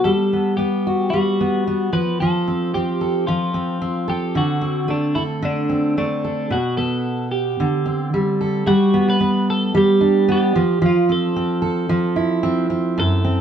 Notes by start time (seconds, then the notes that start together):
Already playing: B2 B3
0.04 G3 A4
0.33 B3
0.57 B3 G4
0.87 F#4
1.10 G3 F#4
1.41 B3
1.67 B3
1.93 F3 B4
2.20 F3 A4
2.48 C4
2.74 C4 G4
3.01 A4
3.27 F3 F4
3.54 C4
3.82 C4
4.08 G4 A4
4.35 D3 F#4
4.61 C4
4.88 A3 D4
5.15 E4 A4
5.42 D3 D4
5.69 C4
5.98 A3 D4
6.24 A4
6.50 B2 F#4
6.77 B3 A4
7.32 G4
7.60 D3
7.86 C4
8.14 G3
8.41 A4
8.67 G3 F#4
8.94 B3
9.10 B4
9.20 B3
9.50 A4
9.74 G3 G4
10.01 D4
10.28 B3 G4
10.56 F3
10.82 F3
10.86 F4
11.09 C4 A4
11.36 C4
11.62 A4
11.89 F3
12.16 E4
12.43 C4
12.70 C4
12.98 F#2 A4
13.24 C4